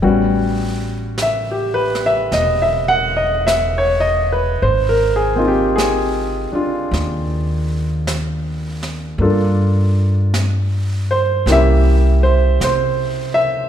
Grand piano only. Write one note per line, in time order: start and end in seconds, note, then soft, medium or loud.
0.02 4.62 G3 medium
0.02 4.62 B3 soft
0.02 4.62 C#4 medium
0.02 4.63 F#4 medium
1.22 1.57 E5 medium
1.51 1.90 G4 soft
1.74 2.02 B4 medium
2.06 2.29 E5 medium
2.34 2.70 D#5 medium
2.62 3.02 E5 medium
2.88 3.17 F#5 medium
3.17 3.41 D#5 medium
3.47 3.84 E5 medium
3.78 4.18 C#5 medium
4.00 4.31 D#5 medium
4.32 4.57 B4 medium
4.62 4.99 C5 medium
4.89 5.31 A#4 medium
5.16 5.46 G#4 medium
5.35 9.18 A#3 soft
5.35 9.19 C4 soft
5.35 9.20 D#4 soft
5.35 6.53 F4 medium
5.48 5.72 G4 medium
5.76 6.87 G#4 medium
6.52 9.20 D4 soft
6.52 9.20 F4 soft
9.20 11.47 A#3 soft
9.20 11.48 D4 soft
9.20 11.48 F4 soft
9.20 11.48 A4 medium
11.11 11.47 C5 medium
11.48 13.69 A#3 medium
11.48 13.69 C#4 soft
11.48 13.69 E4 medium
11.48 13.69 G4 medium
11.48 12.22 E5 medium
12.23 12.60 C5 medium
12.64 13.34 C5 medium
13.34 13.69 E5 medium